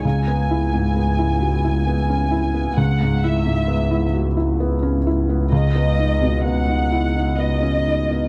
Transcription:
<<
  \new Staff \with { instrumentName = "Violin section" } { \time 3/4 \key cis \minor \tempo 4 = 65 gis''2. | fis''8 e''4 r4. | dis''4 fis''4 dis''4 | }
  \new Staff \with { instrumentName = "Felt piano" } { \time 3/4 \key cis \minor cis,16 b16 e'16 gis,16 b16 e'16 fis'16 e'16 b16 cis'16 e'16 b16 | cis,16 gis,16 e'16 gis,16 b16 e'16 fis'16 e'16 b16 cis'16 e'16 b16 | cis,16 b16 dis'16 b,16 b16 dis'16 e'16 dis'16 b16 cis'16 dis'16 b16 | }
  \new Staff \with { instrumentName = "Double bass" } { \clef bass \time 3/4 \key cis \minor cis,2. | cis,2.~ | cis,2. | }
>>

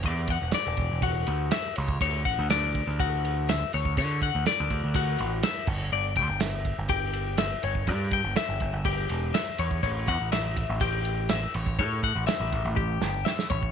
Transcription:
<<
  \new Staff \with { instrumentName = "Clean electric guitar" } { \time 4/4 \key d \major \tempo 4 = 123 d''8 fis''8 d''4 fis'4 e''8 cis''8 | cis''8 fis''8 d''4 fis'4 e''8 cis''8 | cis''8 fis''8 d''4 fis'4 e''8 cis''8 | d''8 g''8 e''4 g'4 e''8 cis''8 |
d''8 g''8 e''4 g'4 e''8 cis''8 | cis''8 fis''8 e''4 g'4 e''8 cis''8 | cis''8 fis''8 e''4 g'4 e''8 cis''8 | }
  \new Staff \with { instrumentName = "Picked electric bass" } { \clef bass \time 4/4 \key d \major e,8. e,,16 r16 e,,16 e,,16 e,,8. d,8 r8 cis,8 | d,8 a,,16 d,4 d,4.~ d,16 d,8 | d8. d,16 r16 d,16 d,16 d,8. a,,8 r8 g,,8 | g,,8 d,16 g,,4 g,,4.~ g,,16 g,,8 |
g,8. g,,16 r16 g,,16 g,,16 g,,8. e,,8 r8 e,8 | a,,8 e,16 a,,4 a,,4.~ a,,16 a,,8 | a,8. a,,16 r16 a,,16 a,,16 a,,8. g,,8 r8 a,,8 | }
  \new DrumStaff \with { instrumentName = "Drums" } \drummode { \time 4/4 <bd cymr>8 <bd cymr>8 <cymr sn>8 <bd cymr>8 <bd cymr>8 cymr8 <cymr sn>8 cymr16 bd16 | <bd cymr>8 <bd cymr>8 <cymr sn>8 <bd cymr>8 <bd cymr>8 cymr8 <cymr sn>8 cymr16 bd16 | <bd cymr>8 <bd cymr>8 <cymr sn>8 <bd cymr>8 <bd cymr>8 cymr8 <cymr sn>8 <cymc bd>8 | r8 <bd cymr>8 <cymr sn>8 <bd cymr>8 <bd cymr>8 cymr8 <cymr sn>8 cymr16 bd16 |
<bd cymr>8 <bd cymr>8 <cymr sn>8 <bd cymr>8 <bd cymr>8 cymr8 <cymr sn>8 cymr16 bd16 | <bd cymr>8 <bd cymr>8 <cymr sn>8 <bd cymr>8 <bd cymr>8 cymr8 <cymr sn>8 cymr16 bd16 | <bd cymr>8 <bd cymr>8 <cymr sn>8 <bd cymr>8 bd8 sn8 sn16 sn16 bd16 bd16 | }
>>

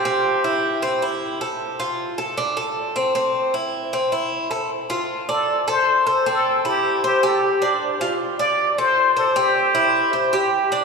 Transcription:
<<
  \new Staff \with { instrumentName = "Muted trumpet" } { \time 4/4 \key d \minor \tempo 4 = 155 g'2.~ g'8 r8 | r1 | r1 | r4. a'4 c''4 a'8 |
a'4 g'4 g'8 a'8 g'8. r16 | r4. d''4 c''4 a'8 | g'2. r4 | }
  \new Staff \with { instrumentName = "Cuban tres" } { \time 4/4 \key d \minor c'4 e'4 c'8 e'4 a'8~ | a'8 f'4 a'8 d'8 a'4 c'8 | c'4 e'4 c'8 e'4 a'8 | r8 f'4 d''4 a'4 c''8 |
c'4 e'4 c''8 g'4 d'8~ | d'8 f'4 d''4 a'4 c''8 | c'4 e'4 c''8 g'4 d'8 | }
>>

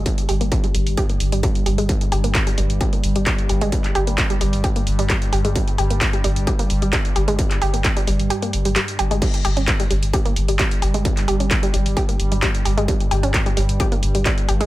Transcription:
<<
  \new Staff \with { instrumentName = "Synth arpeggio sound" } { \clef bass \time 4/4 \key g \minor \tempo 4 = 131 g16 r16 g'16 bes16 r16 g16 g16 r16 g'16 bes16 r16 g16 g16 r16 g'16 aes16 | g16 r16 g'16 bes16 r16 g16 g16 r16 g'16 bes16 r16 g16 g16 r16 g'16 aes16 | g16 r16 g'16 bes16 r16 g16 g16 r16 g'16 bes16 r16 g16 g16 r16 g'16 aes16 | g16 r16 g'16 bes16 r16 g16 g16 r16 g'16 bes16 r16 g16 g16 r16 g'16 aes16 |
g16 r16 g'16 bes16 r16 g16 g16 r16 g'16 bes16 r16 g16 g16 r16 g'16 aes16 | g16 r16 g'16 cis'16 r16 g16 g16 r16 g'16 bes16 r16 g16 g16 r16 g'16 aes16 | g16 r16 g'16 cis'16 r16 g16 g16 r16 g'16 bes16 r16 g16 g16 r16 g'16 aes16 | g16 r16 g'16 cis'16 r16 g16 g16 r16 g'16 bes16 r16 g16 g16 r16 g'16 aes16 | }
  \new Staff \with { instrumentName = "Synth drone" } { \clef bass \time 4/4 \key g \minor <g, g>1~ | <g, g>1~ | <g, g>1~ | <g, g>1~ |
<g, g>1 | <g, g>1~ | <g, g>1~ | <g, g>1 | }
  \new Staff \with { instrumentName = "Sub bass" } { \clef bass \time 4/4 \key g \minor r8 g,,16 g,,16 r8 g,,16 g,,16 r8 g,,16 g,,16 r8 g,,16 g,,16 | r8 g,,16 g,,16 r8 g,,16 g,,16 r8 g,,16 g,,16 r8 g,,16 g,,16 | r8 g,,16 g,,16 r8 g,,16 g,,16 r8 g,,16 g,,16 r8 g,,16 g,,16 | r8 g,,16 g,,16 r8 g,,16 g,,16 r8 g,,16 g,,16 r8 g,,16 g,,16 |
r8 g,,16 g,,16 r8 g,,16 g,,16 r8 g,,16 g,,16 r8 g,,16 g,,16 | r8 g,,16 g,,16 r8 g,,16 g,,16 r8 g,,16 g,,16 r8 g,,16 g,,16 | r8 g,,16 g,,16 r8 g,,16 g,,16 r8 g,,16 g,,16 r8 g,,16 g,,16 | r8 g,,16 g,,16 r8 g,,16 g,,16 r8 g,,16 g,,16 r8 g,,16 g,,16 | }
  \new DrumStaff \with { instrumentName = "Drums" } \drummode { \time 4/4 <hh bd>16 hh16 hho16 hh16 <hh bd>16 hh16 hho16 hho16 <hh bd>16 hh16 hho16 hh16 <hh bd>16 hh16 hho16 hh16 | <hh bd>16 hh16 hho16 hh16 <hc hh bd>16 hh16 hho16 hh16 <hh bd>16 hh16 hho16 hh16 <hc hh bd>16 hh16 hho16 hh16 | <hh bd>16 <hc hh>16 hho16 hh16 <hc hh bd>16 hh16 hho16 hho16 <hh bd>16 hh16 hho16 hh16 <hc hh bd>16 hh16 hho16 hh16 | <hh bd>16 hh16 hho16 hh16 <hc hh bd>16 hh16 hho16 hh16 <hh bd>16 hh16 hho16 hh16 <hc hh bd>16 hh16 hho16 hh16 |
<hh bd>16 <hc hh>16 hho16 hh16 <hc hh bd>16 hh16 hho16 hho16 hh16 hh16 hho16 hh16 <hc hh>16 hh16 hho16 hh16 | <cymc hh bd>16 hh16 hho16 hh16 <hc hh bd>16 hh16 hho16 hh16 <hh bd>16 hh16 hho16 hh16 <hc hh bd>16 hh16 hho16 hh16 | <hh bd>16 <hc hh>16 hho16 hh16 <hc hh bd>16 hh16 hho16 hho16 <hh bd>16 hh16 hho16 hh16 <hc hh bd>16 hh16 hho16 hh16 | <hh bd>16 hh16 hho16 hh16 <hc hh bd>16 hh16 hho16 hh16 <hh bd>16 hh16 hho16 hh16 <hc hh bd>16 hh16 hho16 hh16 | }
>>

